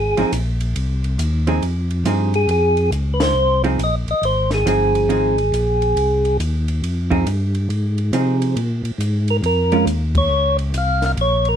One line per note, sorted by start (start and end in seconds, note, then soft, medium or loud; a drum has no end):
0.00 0.15 G#1 medium
0.00 0.32 G#4 medium
0.17 0.25 G#1 soft
0.17 0.31 F3 medium
0.17 0.32 C4 medium
0.17 0.32 D#4 medium
0.17 0.32 G#4 medium
0.17 ride medium
0.33 0.75 A#1 medium
0.33 hi-hat pedal medium
0.33 ride medium
0.61 ride medium
0.76 1.18 C2 medium
0.76 ride medium
1.04 ride soft
1.18 1.61 D#2 loud
1.18 hi-hat pedal medium
1.18 ride medium
1.47 1.61 F3 medium
1.47 1.61 C4 medium
1.47 1.62 D#4 medium
1.47 1.62 G#4 medium
1.47 ride medium
1.62 2.05 F2 medium
1.62 ride medium
1.91 ride soft
2.04 2.47 G2 medium
2.04 2.31 F3 medium
2.04 2.31 C4 medium
2.04 2.31 D#4 medium
2.04 2.32 G#4 medium
2.04 hi-hat pedal medium
2.04 ride medium
2.34 2.50 G#4 medium
2.34 ride soft
2.48 2.91 F2 medium
2.48 2.91 G#4 loud
2.48 ride medium
2.77 ride soft
2.91 3.34 C#2 medium
2.91 hi-hat pedal medium
2.91 ride medium
3.14 3.22 B4 medium
3.20 3.62 C5 loud
3.20 snare medium
3.20 ride medium
3.35 3.78 C2 medium
3.64 3.78 F3 medium
3.64 3.78 C4 medium
3.64 3.78 D#4 medium
3.64 3.79 G#4 medium
3.64 ride soft
3.79 4.05 A#1 medium
3.79 hi-hat pedal medium
3.79 ride medium
3.83 3.95 D#5 medium
4.07 4.15 A#1 soft
4.07 4.25 D#5 loud
4.07 ride soft
4.22 4.65 G#1 medium
4.22 4.50 C5 loud
4.22 ride medium
4.51 4.67 G#4 medium
4.51 snare soft
4.51 ride soft
4.65 5.08 G1 loud
4.65 5.08 F3 medium
4.65 5.08 C4 medium
4.65 5.08 D#4 medium
4.65 5.09 G#4 medium
4.65 6.37 G#4 medium
4.65 hi-hat pedal medium
4.65 ride medium
4.95 ride medium
5.08 5.51 G#1 medium
5.08 5.35 F3 medium
5.08 5.35 C4 medium
5.08 5.35 D#4 medium
5.08 5.35 G#4 medium
5.08 ride medium
5.38 ride soft
5.52 5.95 A#1 loud
5.52 hi-hat pedal medium
5.52 ride medium
5.82 ride soft
5.96 6.39 C2 medium
5.96 ride medium
6.25 ride soft
6.39 6.82 D#2 medium
6.39 hi-hat pedal medium
6.39 ride medium
6.68 ride soft
6.82 7.25 F2 medium
6.82 ride medium
7.10 7.25 F3 medium
7.10 7.25 C4 medium
7.10 7.25 D#4 medium
7.10 7.26 G#4 medium
7.10 kick soft
7.10 ride soft
7.26 7.69 G2 loud
7.26 hi-hat pedal soft
7.26 ride medium
7.55 ride soft
7.69 8.12 G#2 medium
7.69 ride medium
7.98 ride soft
8.13 8.55 C3 medium
8.13 8.57 F3 medium
8.13 8.57 C4 medium
8.13 8.57 D#4 medium
8.13 8.57 G#4 medium
8.13 hi-hat pedal soft
8.13 ride medium
8.42 ride soft
8.56 8.82 A#2 medium
8.56 ride medium
8.84 8.92 A#2 soft
8.84 ride soft
8.98 9.41 G#2 medium
8.98 hi-hat pedal medium
8.98 ride medium
9.28 9.37 A#4 medium
9.28 ride soft
9.43 9.85 F2 medium
9.43 9.85 A#4 loud
9.43 ride medium
9.72 9.86 G#3 medium
9.72 9.86 C#4 medium
9.72 9.86 F4 medium
9.72 ride soft
9.86 10.29 D#2 medium
9.86 hi-hat pedal medium
9.86 ride medium
10.15 10.57 C#5 loud
10.15 kick medium
10.15 ride medium
10.30 10.72 C#2 medium
10.59 ride soft
10.73 11.15 C2 medium
10.73 hi-hat pedal medium
10.73 ride medium
10.78 11.04 F5 medium
11.02 11.12 F5 medium
11.02 snare soft
11.02 ride soft
11.17 11.56 A#1 medium
11.17 ride medium
11.21 11.48 C#5 loud
11.45 11.56 A#4 medium
11.45 ride soft